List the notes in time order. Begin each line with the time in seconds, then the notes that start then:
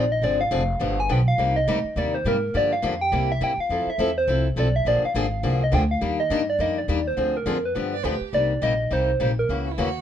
Already playing: A#1 D5
0.12 D#5
0.22 G#1 D3 F3 C4 D4 G#4 D5
0.41 F5
0.51 F1 D3 F3 C4 D4 G#4
0.79 G1 D3 F3 B3 D4 G4
1.00 G#5
1.09 B1 D3 F3 B3 D4 G4 G5
1.28 F5
1.38 C2 C3 G3 A#3 D#4 G4
1.56 D#5
1.68 D2 C3 G3 A#3 D#4 G4
1.84 muted upright bass stroke
1.96 D#2 C3 G3 A#3 D#4 G4 D5
2.15 C5
2.25 G#2 C3 G3 A#3 D#4 G4 A#4
2.54 G2 D3 F3 A#3 D4 G4 D5
2.73 F5
2.82 F2 D3 F3 A#3 D4 G4
3.01 G5
3.12 C2 C3 G3 A#3 E4 G4
3.32 E5
3.40 G2 C3 G3 A#3 E4 G4 G5
3.57 F5, muted upright bass stroke
3.69 F2 F3 C4 E4 A4
3.86 E5, muted upright bass stroke
3.98 E2 F3 C4 E4 A4
4.18 C5
4.27 C2 F3 C4 E4 A4
4.56 B1 F3 C4 E4 A4 D5
4.76 E5
4.85 A#1 D3 F3 A#3 D4 G#4 D5
5.02 F5, muted upright bass stroke
5.14 G#1 D3 F3 A#3 D4 G#4
5.43 C2 D3 F3 A#3 D4 G#4
5.64 D#5
5.72 D2 D3 F3 A#3 D4 G#4 G5
5.91 F5
6.01 D#2 D#3 G3 A#3 D4 G4
6.20 D#5
6.30 G2 D#3 G3 A#3 D4 G4
6.50 D5
6.59 F2 D#3 G3 A#3 D4 G4 D#5
6.78 D5
6.88 D#2 D#3 G3 A#3 D4 G4
7.08 C5
7.17 D2 D3 F3 C4 D4 G#4
7.37 A#4
7.46 F2 D3 F3 C4 D4 G#4
7.65 B4
7.75 G2 D3 F3 B3 D4 G4
7.93 D5
8.04 D2 D3 F3 B3 D4 G4
8.21 muted upright bass stroke
8.33 C2 C3 G3 A#3 D#4 G4 D5
8.62 A#1 C3 G3 A#3 D#4 G4 D#5
8.91 C2 C3 G3 A#3 D#4 G4 C5
9.20 A#1 C3 G3 A#3 D#4 G4 C5
9.39 A#4
9.49 C#2 C#3 E3 A#3 C#4 F#4
9.66 F#4
9.71 E4
9.78 D#2 C#3 E3 A#3 C#4 F#4